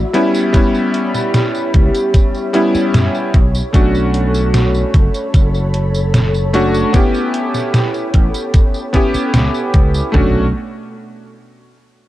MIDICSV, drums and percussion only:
0, 0, Header, 1, 2, 480
1, 0, Start_track
1, 0, Key_signature, 2, "minor"
1, 0, Tempo, 800000
1, 324, Time_signature, 4, 2, 24, 8
1, 7249, End_track
2, 0, Start_track
2, 0, Title_t, "Drums"
2, 85, Note_on_c, 9, 42, 66
2, 145, Note_off_c, 9, 42, 0
2, 207, Note_on_c, 9, 54, 52
2, 267, Note_off_c, 9, 54, 0
2, 324, Note_on_c, 9, 42, 75
2, 324, Note_on_c, 9, 54, 47
2, 325, Note_on_c, 9, 36, 110
2, 384, Note_off_c, 9, 42, 0
2, 384, Note_off_c, 9, 54, 0
2, 385, Note_off_c, 9, 36, 0
2, 447, Note_on_c, 9, 54, 27
2, 507, Note_off_c, 9, 54, 0
2, 565, Note_on_c, 9, 42, 62
2, 625, Note_off_c, 9, 42, 0
2, 687, Note_on_c, 9, 38, 35
2, 687, Note_on_c, 9, 54, 57
2, 747, Note_off_c, 9, 38, 0
2, 747, Note_off_c, 9, 54, 0
2, 805, Note_on_c, 9, 38, 110
2, 805, Note_on_c, 9, 42, 74
2, 805, Note_on_c, 9, 54, 45
2, 865, Note_off_c, 9, 38, 0
2, 865, Note_off_c, 9, 42, 0
2, 865, Note_off_c, 9, 54, 0
2, 927, Note_on_c, 9, 54, 28
2, 987, Note_off_c, 9, 54, 0
2, 1044, Note_on_c, 9, 42, 63
2, 1045, Note_on_c, 9, 36, 102
2, 1104, Note_off_c, 9, 42, 0
2, 1105, Note_off_c, 9, 36, 0
2, 1167, Note_on_c, 9, 42, 35
2, 1167, Note_on_c, 9, 54, 53
2, 1227, Note_off_c, 9, 42, 0
2, 1227, Note_off_c, 9, 54, 0
2, 1284, Note_on_c, 9, 42, 76
2, 1284, Note_on_c, 9, 54, 45
2, 1285, Note_on_c, 9, 36, 120
2, 1344, Note_off_c, 9, 42, 0
2, 1344, Note_off_c, 9, 54, 0
2, 1345, Note_off_c, 9, 36, 0
2, 1407, Note_on_c, 9, 54, 26
2, 1467, Note_off_c, 9, 54, 0
2, 1524, Note_on_c, 9, 42, 62
2, 1584, Note_off_c, 9, 42, 0
2, 1647, Note_on_c, 9, 54, 56
2, 1707, Note_off_c, 9, 54, 0
2, 1765, Note_on_c, 9, 38, 113
2, 1765, Note_on_c, 9, 42, 77
2, 1765, Note_on_c, 9, 54, 46
2, 1825, Note_off_c, 9, 38, 0
2, 1825, Note_off_c, 9, 42, 0
2, 1825, Note_off_c, 9, 54, 0
2, 1887, Note_on_c, 9, 54, 28
2, 1947, Note_off_c, 9, 54, 0
2, 2005, Note_on_c, 9, 36, 102
2, 2005, Note_on_c, 9, 42, 64
2, 2065, Note_off_c, 9, 36, 0
2, 2065, Note_off_c, 9, 42, 0
2, 2128, Note_on_c, 9, 54, 54
2, 2188, Note_off_c, 9, 54, 0
2, 2245, Note_on_c, 9, 36, 114
2, 2245, Note_on_c, 9, 42, 78
2, 2245, Note_on_c, 9, 54, 47
2, 2305, Note_off_c, 9, 36, 0
2, 2305, Note_off_c, 9, 42, 0
2, 2305, Note_off_c, 9, 54, 0
2, 2368, Note_on_c, 9, 54, 29
2, 2428, Note_off_c, 9, 54, 0
2, 2484, Note_on_c, 9, 42, 64
2, 2544, Note_off_c, 9, 42, 0
2, 2606, Note_on_c, 9, 54, 58
2, 2666, Note_off_c, 9, 54, 0
2, 2724, Note_on_c, 9, 38, 112
2, 2724, Note_on_c, 9, 42, 76
2, 2724, Note_on_c, 9, 54, 46
2, 2784, Note_off_c, 9, 38, 0
2, 2784, Note_off_c, 9, 42, 0
2, 2784, Note_off_c, 9, 54, 0
2, 2846, Note_on_c, 9, 54, 29
2, 2906, Note_off_c, 9, 54, 0
2, 2964, Note_on_c, 9, 42, 66
2, 2965, Note_on_c, 9, 36, 103
2, 3024, Note_off_c, 9, 42, 0
2, 3025, Note_off_c, 9, 36, 0
2, 3086, Note_on_c, 9, 42, 35
2, 3086, Note_on_c, 9, 54, 56
2, 3146, Note_off_c, 9, 42, 0
2, 3146, Note_off_c, 9, 54, 0
2, 3204, Note_on_c, 9, 42, 77
2, 3204, Note_on_c, 9, 54, 46
2, 3205, Note_on_c, 9, 36, 113
2, 3264, Note_off_c, 9, 42, 0
2, 3264, Note_off_c, 9, 54, 0
2, 3265, Note_off_c, 9, 36, 0
2, 3327, Note_on_c, 9, 54, 27
2, 3387, Note_off_c, 9, 54, 0
2, 3443, Note_on_c, 9, 42, 66
2, 3503, Note_off_c, 9, 42, 0
2, 3567, Note_on_c, 9, 54, 56
2, 3627, Note_off_c, 9, 54, 0
2, 3684, Note_on_c, 9, 38, 114
2, 3684, Note_on_c, 9, 42, 79
2, 3684, Note_on_c, 9, 54, 50
2, 3744, Note_off_c, 9, 38, 0
2, 3744, Note_off_c, 9, 42, 0
2, 3744, Note_off_c, 9, 54, 0
2, 3806, Note_on_c, 9, 54, 29
2, 3866, Note_off_c, 9, 54, 0
2, 3924, Note_on_c, 9, 42, 67
2, 3984, Note_off_c, 9, 42, 0
2, 4046, Note_on_c, 9, 54, 57
2, 4106, Note_off_c, 9, 54, 0
2, 4163, Note_on_c, 9, 42, 81
2, 4163, Note_on_c, 9, 54, 48
2, 4165, Note_on_c, 9, 36, 114
2, 4223, Note_off_c, 9, 42, 0
2, 4223, Note_off_c, 9, 54, 0
2, 4225, Note_off_c, 9, 36, 0
2, 4286, Note_on_c, 9, 54, 30
2, 4346, Note_off_c, 9, 54, 0
2, 4403, Note_on_c, 9, 42, 66
2, 4463, Note_off_c, 9, 42, 0
2, 4526, Note_on_c, 9, 38, 37
2, 4526, Note_on_c, 9, 54, 59
2, 4586, Note_off_c, 9, 38, 0
2, 4586, Note_off_c, 9, 54, 0
2, 4644, Note_on_c, 9, 38, 113
2, 4644, Note_on_c, 9, 42, 78
2, 4644, Note_on_c, 9, 54, 47
2, 4704, Note_off_c, 9, 38, 0
2, 4704, Note_off_c, 9, 42, 0
2, 4704, Note_off_c, 9, 54, 0
2, 4765, Note_on_c, 9, 54, 29
2, 4825, Note_off_c, 9, 54, 0
2, 4882, Note_on_c, 9, 42, 69
2, 4885, Note_on_c, 9, 36, 102
2, 4942, Note_off_c, 9, 42, 0
2, 4945, Note_off_c, 9, 36, 0
2, 5006, Note_on_c, 9, 42, 36
2, 5006, Note_on_c, 9, 54, 57
2, 5066, Note_off_c, 9, 42, 0
2, 5066, Note_off_c, 9, 54, 0
2, 5123, Note_on_c, 9, 42, 81
2, 5123, Note_on_c, 9, 54, 49
2, 5124, Note_on_c, 9, 36, 118
2, 5183, Note_off_c, 9, 42, 0
2, 5183, Note_off_c, 9, 54, 0
2, 5184, Note_off_c, 9, 36, 0
2, 5245, Note_on_c, 9, 54, 29
2, 5305, Note_off_c, 9, 54, 0
2, 5363, Note_on_c, 9, 42, 68
2, 5364, Note_on_c, 9, 36, 59
2, 5423, Note_off_c, 9, 42, 0
2, 5424, Note_off_c, 9, 36, 0
2, 5485, Note_on_c, 9, 54, 58
2, 5545, Note_off_c, 9, 54, 0
2, 5603, Note_on_c, 9, 38, 118
2, 5603, Note_on_c, 9, 42, 80
2, 5603, Note_on_c, 9, 54, 49
2, 5663, Note_off_c, 9, 38, 0
2, 5663, Note_off_c, 9, 42, 0
2, 5663, Note_off_c, 9, 54, 0
2, 5726, Note_on_c, 9, 54, 29
2, 5786, Note_off_c, 9, 54, 0
2, 5843, Note_on_c, 9, 42, 68
2, 5844, Note_on_c, 9, 36, 100
2, 5903, Note_off_c, 9, 42, 0
2, 5904, Note_off_c, 9, 36, 0
2, 5966, Note_on_c, 9, 54, 57
2, 6026, Note_off_c, 9, 54, 0
2, 6084, Note_on_c, 9, 36, 100
2, 6084, Note_on_c, 9, 43, 104
2, 6144, Note_off_c, 9, 36, 0
2, 6144, Note_off_c, 9, 43, 0
2, 7249, End_track
0, 0, End_of_file